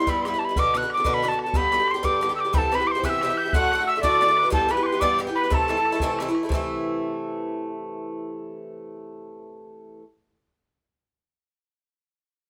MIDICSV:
0, 0, Header, 1, 5, 480
1, 0, Start_track
1, 0, Tempo, 330943
1, 808, Time_signature, 6, 3, 24, 8
1, 18117, End_track
2, 0, Start_track
2, 0, Title_t, "Tin whistle"
2, 0, Program_c, 0, 75
2, 0, Note_on_c, 0, 84, 81
2, 138, Note_on_c, 0, 83, 92
2, 160, Note_off_c, 0, 84, 0
2, 326, Note_on_c, 0, 84, 62
2, 348, Note_off_c, 0, 83, 0
2, 413, Note_on_c, 0, 83, 102
2, 435, Note_off_c, 0, 84, 0
2, 565, Note_on_c, 0, 81, 73
2, 587, Note_off_c, 0, 83, 0
2, 648, Note_on_c, 0, 83, 98
2, 670, Note_off_c, 0, 81, 0
2, 859, Note_on_c, 0, 86, 124
2, 881, Note_off_c, 0, 83, 0
2, 1120, Note_on_c, 0, 90, 96
2, 1141, Note_off_c, 0, 86, 0
2, 1324, Note_off_c, 0, 90, 0
2, 1353, Note_on_c, 0, 86, 96
2, 1583, Note_off_c, 0, 86, 0
2, 1583, Note_on_c, 0, 86, 101
2, 1652, Note_on_c, 0, 83, 110
2, 1667, Note_off_c, 0, 86, 0
2, 1862, Note_on_c, 0, 81, 97
2, 1884, Note_off_c, 0, 83, 0
2, 2054, Note_off_c, 0, 81, 0
2, 2071, Note_on_c, 0, 81, 94
2, 2273, Note_on_c, 0, 83, 127
2, 2294, Note_off_c, 0, 81, 0
2, 2770, Note_on_c, 0, 84, 105
2, 2792, Note_off_c, 0, 83, 0
2, 2970, Note_on_c, 0, 86, 105
2, 2991, Note_off_c, 0, 84, 0
2, 3404, Note_off_c, 0, 86, 0
2, 3415, Note_on_c, 0, 88, 75
2, 3486, Note_on_c, 0, 86, 95
2, 3508, Note_off_c, 0, 88, 0
2, 3689, Note_on_c, 0, 83, 104
2, 3711, Note_off_c, 0, 86, 0
2, 3739, Note_on_c, 0, 81, 113
2, 3753, Note_off_c, 0, 83, 0
2, 3987, Note_on_c, 0, 83, 99
2, 4009, Note_off_c, 0, 81, 0
2, 4164, Note_on_c, 0, 86, 73
2, 4185, Note_off_c, 0, 83, 0
2, 4227, Note_on_c, 0, 84, 103
2, 4249, Note_off_c, 0, 86, 0
2, 4421, Note_on_c, 0, 90, 106
2, 4443, Note_off_c, 0, 84, 0
2, 4487, Note_on_c, 0, 88, 115
2, 4502, Note_off_c, 0, 90, 0
2, 4898, Note_on_c, 0, 91, 100
2, 4919, Note_off_c, 0, 88, 0
2, 5124, Note_on_c, 0, 90, 124
2, 5146, Note_off_c, 0, 91, 0
2, 5602, Note_off_c, 0, 90, 0
2, 5611, Note_on_c, 0, 88, 92
2, 5823, Note_off_c, 0, 88, 0
2, 5841, Note_on_c, 0, 86, 125
2, 6510, Note_off_c, 0, 86, 0
2, 6579, Note_on_c, 0, 81, 113
2, 6836, Note_on_c, 0, 83, 95
2, 6857, Note_off_c, 0, 81, 0
2, 7007, Note_on_c, 0, 86, 75
2, 7028, Note_off_c, 0, 83, 0
2, 7050, Note_on_c, 0, 84, 101
2, 7072, Note_off_c, 0, 86, 0
2, 7255, Note_on_c, 0, 86, 114
2, 7276, Note_off_c, 0, 84, 0
2, 7535, Note_off_c, 0, 86, 0
2, 7766, Note_on_c, 0, 83, 92
2, 7994, Note_off_c, 0, 83, 0
2, 7994, Note_on_c, 0, 83, 102
2, 8043, Note_on_c, 0, 81, 111
2, 8057, Note_off_c, 0, 83, 0
2, 8984, Note_off_c, 0, 81, 0
2, 18117, End_track
3, 0, Start_track
3, 0, Title_t, "Accordion"
3, 0, Program_c, 1, 21
3, 3708, Note_on_c, 1, 69, 84
3, 3967, Note_on_c, 1, 71, 83
3, 3971, Note_off_c, 1, 69, 0
3, 4170, Note_off_c, 1, 71, 0
3, 4178, Note_on_c, 1, 72, 78
3, 4388, Note_off_c, 1, 72, 0
3, 4415, Note_on_c, 1, 76, 104
3, 5141, Note_on_c, 1, 78, 114
3, 5150, Note_off_c, 1, 76, 0
3, 5632, Note_on_c, 1, 76, 88
3, 5639, Note_off_c, 1, 78, 0
3, 5826, Note_on_c, 1, 74, 104
3, 5856, Note_off_c, 1, 76, 0
3, 6335, Note_on_c, 1, 71, 85
3, 6342, Note_off_c, 1, 74, 0
3, 6545, Note_off_c, 1, 71, 0
3, 6555, Note_on_c, 1, 69, 84
3, 6817, Note_on_c, 1, 71, 84
3, 6834, Note_off_c, 1, 69, 0
3, 7278, Note_on_c, 1, 74, 95
3, 7288, Note_off_c, 1, 71, 0
3, 7528, Note_off_c, 1, 74, 0
3, 7767, Note_on_c, 1, 71, 91
3, 8000, Note_on_c, 1, 69, 86
3, 8003, Note_off_c, 1, 71, 0
3, 8929, Note_off_c, 1, 69, 0
3, 18117, End_track
4, 0, Start_track
4, 0, Title_t, "Bouzouki"
4, 0, Program_c, 2, 25
4, 6, Note_on_c, 2, 59, 58
4, 22, Note_on_c, 2, 55, 49
4, 86, Note_off_c, 2, 55, 0
4, 98, Note_off_c, 2, 59, 0
4, 101, Note_on_c, 2, 43, 77
4, 103, Note_on_c, 2, 55, 92
4, 115, Note_on_c, 2, 59, 83
4, 126, Note_on_c, 2, 64, 83
4, 348, Note_off_c, 2, 43, 0
4, 364, Note_off_c, 2, 55, 0
4, 366, Note_on_c, 2, 43, 61
4, 370, Note_off_c, 2, 59, 0
4, 376, Note_off_c, 2, 64, 0
4, 380, Note_on_c, 2, 55, 63
4, 397, Note_on_c, 2, 59, 64
4, 406, Note_on_c, 2, 64, 76
4, 472, Note_off_c, 2, 64, 0
4, 474, Note_off_c, 2, 43, 0
4, 481, Note_off_c, 2, 55, 0
4, 489, Note_on_c, 2, 64, 49
4, 490, Note_off_c, 2, 59, 0
4, 507, Note_on_c, 2, 59, 46
4, 521, Note_on_c, 2, 55, 46
4, 694, Note_off_c, 2, 64, 0
4, 711, Note_on_c, 2, 64, 50
4, 714, Note_off_c, 2, 59, 0
4, 721, Note_off_c, 2, 55, 0
4, 734, Note_on_c, 2, 59, 49
4, 740, Note_on_c, 2, 55, 43
4, 816, Note_off_c, 2, 64, 0
4, 821, Note_on_c, 2, 47, 76
4, 824, Note_off_c, 2, 59, 0
4, 826, Note_off_c, 2, 55, 0
4, 832, Note_on_c, 2, 50, 94
4, 838, Note_on_c, 2, 66, 96
4, 842, Note_on_c, 2, 59, 89
4, 1063, Note_off_c, 2, 47, 0
4, 1073, Note_off_c, 2, 50, 0
4, 1080, Note_on_c, 2, 47, 73
4, 1083, Note_off_c, 2, 59, 0
4, 1091, Note_off_c, 2, 66, 0
4, 1091, Note_on_c, 2, 50, 70
4, 1101, Note_on_c, 2, 59, 67
4, 1112, Note_on_c, 2, 66, 76
4, 1178, Note_off_c, 2, 66, 0
4, 1191, Note_off_c, 2, 47, 0
4, 1196, Note_off_c, 2, 50, 0
4, 1196, Note_on_c, 2, 66, 52
4, 1201, Note_off_c, 2, 59, 0
4, 1216, Note_on_c, 2, 59, 51
4, 1233, Note_on_c, 2, 50, 40
4, 1395, Note_off_c, 2, 66, 0
4, 1409, Note_off_c, 2, 59, 0
4, 1412, Note_on_c, 2, 66, 57
4, 1426, Note_on_c, 2, 59, 51
4, 1431, Note_off_c, 2, 50, 0
4, 1448, Note_on_c, 2, 50, 53
4, 1508, Note_off_c, 2, 50, 0
4, 1514, Note_on_c, 2, 47, 78
4, 1518, Note_off_c, 2, 59, 0
4, 1525, Note_on_c, 2, 50, 90
4, 1526, Note_off_c, 2, 66, 0
4, 1535, Note_on_c, 2, 59, 93
4, 1546, Note_on_c, 2, 66, 98
4, 1758, Note_off_c, 2, 47, 0
4, 1772, Note_off_c, 2, 50, 0
4, 1776, Note_on_c, 2, 47, 57
4, 1784, Note_off_c, 2, 59, 0
4, 1789, Note_off_c, 2, 66, 0
4, 1790, Note_on_c, 2, 50, 75
4, 1802, Note_on_c, 2, 59, 74
4, 1806, Note_on_c, 2, 66, 80
4, 1891, Note_off_c, 2, 66, 0
4, 1898, Note_off_c, 2, 47, 0
4, 1905, Note_off_c, 2, 50, 0
4, 1909, Note_on_c, 2, 66, 55
4, 1911, Note_off_c, 2, 59, 0
4, 1933, Note_on_c, 2, 59, 51
4, 1945, Note_on_c, 2, 50, 43
4, 2106, Note_off_c, 2, 66, 0
4, 2117, Note_off_c, 2, 59, 0
4, 2123, Note_on_c, 2, 66, 51
4, 2132, Note_off_c, 2, 50, 0
4, 2134, Note_on_c, 2, 59, 35
4, 2150, Note_on_c, 2, 50, 38
4, 2232, Note_off_c, 2, 50, 0
4, 2232, Note_off_c, 2, 59, 0
4, 2235, Note_on_c, 2, 43, 79
4, 2241, Note_off_c, 2, 66, 0
4, 2249, Note_on_c, 2, 59, 80
4, 2250, Note_on_c, 2, 50, 76
4, 2264, Note_on_c, 2, 67, 77
4, 2475, Note_off_c, 2, 43, 0
4, 2484, Note_off_c, 2, 50, 0
4, 2493, Note_on_c, 2, 43, 62
4, 2494, Note_off_c, 2, 59, 0
4, 2501, Note_on_c, 2, 50, 67
4, 2507, Note_off_c, 2, 67, 0
4, 2512, Note_on_c, 2, 59, 72
4, 2525, Note_on_c, 2, 67, 77
4, 2586, Note_off_c, 2, 67, 0
4, 2602, Note_off_c, 2, 59, 0
4, 2604, Note_on_c, 2, 67, 51
4, 2616, Note_off_c, 2, 43, 0
4, 2619, Note_on_c, 2, 59, 39
4, 2620, Note_off_c, 2, 50, 0
4, 2638, Note_on_c, 2, 50, 38
4, 2800, Note_off_c, 2, 67, 0
4, 2817, Note_on_c, 2, 67, 66
4, 2825, Note_off_c, 2, 59, 0
4, 2840, Note_off_c, 2, 50, 0
4, 2843, Note_on_c, 2, 59, 48
4, 2857, Note_on_c, 2, 50, 46
4, 2929, Note_off_c, 2, 50, 0
4, 2943, Note_on_c, 2, 43, 85
4, 2944, Note_off_c, 2, 59, 0
4, 2947, Note_on_c, 2, 50, 88
4, 2948, Note_off_c, 2, 67, 0
4, 2962, Note_on_c, 2, 59, 77
4, 2969, Note_on_c, 2, 67, 80
4, 3190, Note_off_c, 2, 43, 0
4, 3208, Note_off_c, 2, 50, 0
4, 3208, Note_on_c, 2, 43, 67
4, 3214, Note_off_c, 2, 59, 0
4, 3225, Note_on_c, 2, 50, 68
4, 3231, Note_on_c, 2, 59, 73
4, 3232, Note_off_c, 2, 67, 0
4, 3250, Note_on_c, 2, 67, 63
4, 3305, Note_off_c, 2, 67, 0
4, 3321, Note_off_c, 2, 59, 0
4, 3322, Note_on_c, 2, 67, 60
4, 3333, Note_off_c, 2, 43, 0
4, 3335, Note_off_c, 2, 50, 0
4, 3339, Note_on_c, 2, 59, 47
4, 3353, Note_on_c, 2, 50, 45
4, 3531, Note_off_c, 2, 67, 0
4, 3547, Note_off_c, 2, 59, 0
4, 3548, Note_on_c, 2, 67, 52
4, 3559, Note_off_c, 2, 50, 0
4, 3565, Note_on_c, 2, 59, 42
4, 3576, Note_on_c, 2, 50, 43
4, 3667, Note_off_c, 2, 59, 0
4, 3667, Note_on_c, 2, 48, 69
4, 3671, Note_off_c, 2, 50, 0
4, 3673, Note_off_c, 2, 67, 0
4, 3677, Note_on_c, 2, 52, 94
4, 3685, Note_on_c, 2, 59, 81
4, 3689, Note_on_c, 2, 67, 107
4, 3922, Note_off_c, 2, 48, 0
4, 3935, Note_off_c, 2, 52, 0
4, 3940, Note_on_c, 2, 48, 65
4, 3952, Note_off_c, 2, 59, 0
4, 3952, Note_on_c, 2, 52, 70
4, 3954, Note_off_c, 2, 67, 0
4, 3967, Note_on_c, 2, 59, 69
4, 3975, Note_on_c, 2, 67, 73
4, 4043, Note_off_c, 2, 67, 0
4, 4059, Note_off_c, 2, 48, 0
4, 4060, Note_on_c, 2, 67, 49
4, 4064, Note_off_c, 2, 59, 0
4, 4065, Note_off_c, 2, 52, 0
4, 4081, Note_on_c, 2, 59, 50
4, 4094, Note_on_c, 2, 52, 45
4, 4264, Note_off_c, 2, 67, 0
4, 4281, Note_on_c, 2, 67, 68
4, 4286, Note_off_c, 2, 59, 0
4, 4303, Note_on_c, 2, 59, 56
4, 4305, Note_off_c, 2, 52, 0
4, 4320, Note_on_c, 2, 52, 47
4, 4398, Note_off_c, 2, 52, 0
4, 4398, Note_off_c, 2, 67, 0
4, 4403, Note_on_c, 2, 48, 86
4, 4405, Note_off_c, 2, 59, 0
4, 4416, Note_on_c, 2, 52, 84
4, 4423, Note_on_c, 2, 59, 95
4, 4433, Note_on_c, 2, 67, 85
4, 4661, Note_off_c, 2, 48, 0
4, 4669, Note_off_c, 2, 52, 0
4, 4679, Note_on_c, 2, 48, 71
4, 4681, Note_off_c, 2, 59, 0
4, 4686, Note_off_c, 2, 67, 0
4, 4686, Note_on_c, 2, 52, 72
4, 4703, Note_on_c, 2, 59, 78
4, 4709, Note_on_c, 2, 67, 81
4, 4754, Note_off_c, 2, 67, 0
4, 4771, Note_on_c, 2, 67, 50
4, 4773, Note_off_c, 2, 59, 0
4, 4787, Note_off_c, 2, 48, 0
4, 4790, Note_on_c, 2, 59, 62
4, 4791, Note_off_c, 2, 52, 0
4, 4810, Note_on_c, 2, 52, 49
4, 4991, Note_off_c, 2, 67, 0
4, 5008, Note_off_c, 2, 59, 0
4, 5008, Note_on_c, 2, 67, 44
4, 5022, Note_off_c, 2, 52, 0
4, 5025, Note_on_c, 2, 59, 39
4, 5042, Note_on_c, 2, 52, 42
4, 5121, Note_off_c, 2, 67, 0
4, 5130, Note_off_c, 2, 59, 0
4, 5138, Note_on_c, 2, 45, 83
4, 5139, Note_off_c, 2, 52, 0
4, 5146, Note_on_c, 2, 50, 94
4, 5162, Note_on_c, 2, 57, 88
4, 5167, Note_on_c, 2, 66, 86
4, 5390, Note_off_c, 2, 45, 0
4, 5402, Note_off_c, 2, 50, 0
4, 5408, Note_on_c, 2, 45, 60
4, 5410, Note_off_c, 2, 57, 0
4, 5412, Note_off_c, 2, 66, 0
4, 5419, Note_on_c, 2, 50, 66
4, 5438, Note_on_c, 2, 57, 71
4, 5444, Note_on_c, 2, 66, 75
4, 5500, Note_off_c, 2, 66, 0
4, 5512, Note_off_c, 2, 45, 0
4, 5517, Note_off_c, 2, 50, 0
4, 5517, Note_on_c, 2, 66, 53
4, 5521, Note_off_c, 2, 57, 0
4, 5538, Note_on_c, 2, 57, 50
4, 5552, Note_on_c, 2, 50, 40
4, 5725, Note_off_c, 2, 66, 0
4, 5739, Note_off_c, 2, 57, 0
4, 5742, Note_on_c, 2, 66, 53
4, 5753, Note_off_c, 2, 50, 0
4, 5756, Note_on_c, 2, 57, 48
4, 5770, Note_on_c, 2, 50, 47
4, 5832, Note_off_c, 2, 50, 0
4, 5836, Note_off_c, 2, 57, 0
4, 5843, Note_off_c, 2, 66, 0
4, 5845, Note_on_c, 2, 45, 89
4, 5849, Note_on_c, 2, 50, 82
4, 5854, Note_on_c, 2, 57, 105
4, 5861, Note_on_c, 2, 66, 92
4, 6087, Note_off_c, 2, 45, 0
4, 6102, Note_off_c, 2, 50, 0
4, 6104, Note_on_c, 2, 45, 67
4, 6109, Note_off_c, 2, 57, 0
4, 6119, Note_off_c, 2, 66, 0
4, 6119, Note_on_c, 2, 50, 75
4, 6126, Note_on_c, 2, 57, 72
4, 6135, Note_on_c, 2, 66, 74
4, 6197, Note_off_c, 2, 66, 0
4, 6213, Note_off_c, 2, 57, 0
4, 6215, Note_on_c, 2, 66, 65
4, 6220, Note_off_c, 2, 45, 0
4, 6227, Note_off_c, 2, 50, 0
4, 6231, Note_on_c, 2, 57, 52
4, 6248, Note_on_c, 2, 50, 47
4, 6414, Note_off_c, 2, 66, 0
4, 6431, Note_on_c, 2, 66, 47
4, 6443, Note_off_c, 2, 57, 0
4, 6451, Note_off_c, 2, 50, 0
4, 6460, Note_on_c, 2, 57, 39
4, 6468, Note_on_c, 2, 50, 37
4, 6533, Note_on_c, 2, 43, 97
4, 6542, Note_off_c, 2, 50, 0
4, 6548, Note_off_c, 2, 57, 0
4, 6548, Note_on_c, 2, 52, 83
4, 6552, Note_off_c, 2, 66, 0
4, 6554, Note_on_c, 2, 59, 84
4, 6561, Note_on_c, 2, 67, 99
4, 6777, Note_off_c, 2, 43, 0
4, 6791, Note_off_c, 2, 52, 0
4, 6795, Note_on_c, 2, 43, 72
4, 6805, Note_off_c, 2, 59, 0
4, 6808, Note_on_c, 2, 52, 71
4, 6813, Note_off_c, 2, 67, 0
4, 6823, Note_on_c, 2, 59, 74
4, 6831, Note_on_c, 2, 67, 63
4, 6901, Note_off_c, 2, 67, 0
4, 6919, Note_off_c, 2, 59, 0
4, 6919, Note_on_c, 2, 67, 56
4, 6924, Note_off_c, 2, 43, 0
4, 6925, Note_off_c, 2, 52, 0
4, 6937, Note_on_c, 2, 59, 47
4, 6942, Note_on_c, 2, 52, 39
4, 7124, Note_off_c, 2, 67, 0
4, 7141, Note_on_c, 2, 67, 58
4, 7142, Note_off_c, 2, 59, 0
4, 7159, Note_on_c, 2, 59, 56
4, 7160, Note_off_c, 2, 52, 0
4, 7177, Note_on_c, 2, 52, 45
4, 7258, Note_off_c, 2, 52, 0
4, 7265, Note_off_c, 2, 59, 0
4, 7266, Note_on_c, 2, 43, 83
4, 7267, Note_off_c, 2, 67, 0
4, 7276, Note_on_c, 2, 52, 94
4, 7283, Note_on_c, 2, 59, 105
4, 7293, Note_on_c, 2, 67, 98
4, 7501, Note_off_c, 2, 43, 0
4, 7508, Note_off_c, 2, 52, 0
4, 7518, Note_on_c, 2, 43, 68
4, 7519, Note_off_c, 2, 59, 0
4, 7525, Note_on_c, 2, 52, 70
4, 7529, Note_off_c, 2, 67, 0
4, 7537, Note_on_c, 2, 59, 78
4, 7546, Note_on_c, 2, 67, 77
4, 7626, Note_off_c, 2, 67, 0
4, 7643, Note_on_c, 2, 67, 64
4, 7646, Note_off_c, 2, 43, 0
4, 7649, Note_off_c, 2, 52, 0
4, 7649, Note_off_c, 2, 59, 0
4, 7667, Note_on_c, 2, 59, 52
4, 7680, Note_on_c, 2, 52, 43
4, 7862, Note_off_c, 2, 67, 0
4, 7875, Note_off_c, 2, 59, 0
4, 7880, Note_on_c, 2, 67, 44
4, 7892, Note_on_c, 2, 59, 47
4, 7893, Note_off_c, 2, 52, 0
4, 7910, Note_on_c, 2, 52, 44
4, 7968, Note_off_c, 2, 52, 0
4, 7982, Note_on_c, 2, 48, 84
4, 7985, Note_on_c, 2, 52, 86
4, 7990, Note_off_c, 2, 59, 0
4, 7995, Note_on_c, 2, 57, 77
4, 7996, Note_off_c, 2, 67, 0
4, 8006, Note_on_c, 2, 64, 86
4, 8222, Note_off_c, 2, 48, 0
4, 8237, Note_off_c, 2, 52, 0
4, 8240, Note_on_c, 2, 48, 61
4, 8251, Note_off_c, 2, 57, 0
4, 8254, Note_on_c, 2, 52, 69
4, 8255, Note_off_c, 2, 64, 0
4, 8268, Note_on_c, 2, 57, 69
4, 8273, Note_on_c, 2, 64, 75
4, 8353, Note_off_c, 2, 64, 0
4, 8366, Note_off_c, 2, 48, 0
4, 8366, Note_off_c, 2, 57, 0
4, 8370, Note_on_c, 2, 64, 53
4, 8374, Note_off_c, 2, 52, 0
4, 8383, Note_on_c, 2, 57, 48
4, 8403, Note_on_c, 2, 52, 39
4, 8574, Note_off_c, 2, 64, 0
4, 8592, Note_on_c, 2, 64, 77
4, 8596, Note_off_c, 2, 57, 0
4, 8613, Note_on_c, 2, 57, 64
4, 8617, Note_off_c, 2, 52, 0
4, 8633, Note_on_c, 2, 52, 53
4, 8712, Note_off_c, 2, 64, 0
4, 8717, Note_off_c, 2, 52, 0
4, 8722, Note_off_c, 2, 57, 0
4, 8728, Note_on_c, 2, 48, 93
4, 8735, Note_on_c, 2, 52, 91
4, 8745, Note_on_c, 2, 57, 96
4, 8754, Note_on_c, 2, 64, 102
4, 8977, Note_off_c, 2, 48, 0
4, 8985, Note_off_c, 2, 52, 0
4, 8994, Note_on_c, 2, 48, 72
4, 9000, Note_off_c, 2, 57, 0
4, 9002, Note_on_c, 2, 52, 80
4, 9005, Note_off_c, 2, 64, 0
4, 9021, Note_on_c, 2, 57, 88
4, 9026, Note_on_c, 2, 64, 89
4, 9099, Note_off_c, 2, 64, 0
4, 9104, Note_off_c, 2, 48, 0
4, 9108, Note_off_c, 2, 52, 0
4, 9117, Note_off_c, 2, 57, 0
4, 9117, Note_on_c, 2, 64, 62
4, 9132, Note_on_c, 2, 57, 63
4, 9151, Note_on_c, 2, 52, 55
4, 9309, Note_off_c, 2, 64, 0
4, 9327, Note_on_c, 2, 64, 47
4, 9331, Note_off_c, 2, 57, 0
4, 9348, Note_on_c, 2, 57, 55
4, 9351, Note_off_c, 2, 52, 0
4, 9368, Note_on_c, 2, 52, 41
4, 9413, Note_on_c, 2, 48, 72
4, 9434, Note_off_c, 2, 52, 0
4, 9439, Note_off_c, 2, 64, 0
4, 9450, Note_off_c, 2, 57, 0
4, 9452, Note_on_c, 2, 52, 92
4, 9481, Note_on_c, 2, 57, 88
4, 9498, Note_on_c, 2, 64, 92
4, 14490, Note_off_c, 2, 48, 0
4, 14528, Note_off_c, 2, 52, 0
4, 14557, Note_off_c, 2, 57, 0
4, 14575, Note_off_c, 2, 64, 0
4, 18117, End_track
5, 0, Start_track
5, 0, Title_t, "Bodhran"
5, 102, Note_on_c, 9, 64, 94
5, 247, Note_off_c, 9, 64, 0
5, 365, Note_on_c, 9, 64, 72
5, 510, Note_off_c, 9, 64, 0
5, 588, Note_on_c, 9, 64, 63
5, 733, Note_off_c, 9, 64, 0
5, 814, Note_on_c, 9, 64, 79
5, 946, Note_off_c, 9, 64, 0
5, 946, Note_on_c, 9, 64, 28
5, 1072, Note_off_c, 9, 64, 0
5, 1072, Note_on_c, 9, 64, 74
5, 1217, Note_off_c, 9, 64, 0
5, 1305, Note_on_c, 9, 64, 64
5, 1450, Note_off_c, 9, 64, 0
5, 1520, Note_on_c, 9, 64, 85
5, 1665, Note_off_c, 9, 64, 0
5, 1791, Note_on_c, 9, 64, 78
5, 1936, Note_off_c, 9, 64, 0
5, 2016, Note_on_c, 9, 64, 59
5, 2161, Note_off_c, 9, 64, 0
5, 2227, Note_on_c, 9, 64, 88
5, 2370, Note_off_c, 9, 64, 0
5, 2370, Note_on_c, 9, 64, 27
5, 2499, Note_off_c, 9, 64, 0
5, 2499, Note_on_c, 9, 64, 72
5, 2644, Note_off_c, 9, 64, 0
5, 2722, Note_on_c, 9, 64, 68
5, 2867, Note_off_c, 9, 64, 0
5, 2959, Note_on_c, 9, 64, 100
5, 3104, Note_off_c, 9, 64, 0
5, 3230, Note_on_c, 9, 64, 71
5, 3375, Note_off_c, 9, 64, 0
5, 3463, Note_on_c, 9, 64, 68
5, 3608, Note_off_c, 9, 64, 0
5, 3684, Note_on_c, 9, 64, 90
5, 3829, Note_off_c, 9, 64, 0
5, 3952, Note_on_c, 9, 64, 69
5, 4097, Note_off_c, 9, 64, 0
5, 4178, Note_on_c, 9, 64, 62
5, 4323, Note_off_c, 9, 64, 0
5, 4401, Note_on_c, 9, 64, 81
5, 4546, Note_off_c, 9, 64, 0
5, 4661, Note_on_c, 9, 64, 74
5, 4806, Note_off_c, 9, 64, 0
5, 4893, Note_on_c, 9, 64, 67
5, 5038, Note_off_c, 9, 64, 0
5, 5119, Note_on_c, 9, 64, 86
5, 5264, Note_off_c, 9, 64, 0
5, 5392, Note_on_c, 9, 64, 67
5, 5537, Note_off_c, 9, 64, 0
5, 5625, Note_on_c, 9, 64, 58
5, 5770, Note_off_c, 9, 64, 0
5, 5852, Note_on_c, 9, 64, 89
5, 5997, Note_off_c, 9, 64, 0
5, 6120, Note_on_c, 9, 64, 70
5, 6265, Note_off_c, 9, 64, 0
5, 6335, Note_on_c, 9, 64, 64
5, 6480, Note_off_c, 9, 64, 0
5, 6563, Note_on_c, 9, 64, 76
5, 6708, Note_off_c, 9, 64, 0
5, 6828, Note_on_c, 9, 64, 66
5, 6974, Note_off_c, 9, 64, 0
5, 7049, Note_on_c, 9, 64, 54
5, 7194, Note_off_c, 9, 64, 0
5, 7277, Note_on_c, 9, 64, 86
5, 7422, Note_off_c, 9, 64, 0
5, 7553, Note_on_c, 9, 64, 70
5, 7698, Note_off_c, 9, 64, 0
5, 7770, Note_on_c, 9, 64, 62
5, 7915, Note_off_c, 9, 64, 0
5, 7997, Note_on_c, 9, 64, 83
5, 8133, Note_off_c, 9, 64, 0
5, 8133, Note_on_c, 9, 64, 25
5, 8259, Note_off_c, 9, 64, 0
5, 8259, Note_on_c, 9, 64, 60
5, 8404, Note_off_c, 9, 64, 0
5, 8489, Note_on_c, 9, 64, 54
5, 8634, Note_off_c, 9, 64, 0
5, 8703, Note_on_c, 9, 64, 93
5, 8848, Note_off_c, 9, 64, 0
5, 8974, Note_on_c, 9, 64, 73
5, 9119, Note_off_c, 9, 64, 0
5, 9208, Note_on_c, 9, 64, 61
5, 9353, Note_off_c, 9, 64, 0
5, 9432, Note_on_c, 9, 64, 89
5, 9577, Note_off_c, 9, 64, 0
5, 18117, End_track
0, 0, End_of_file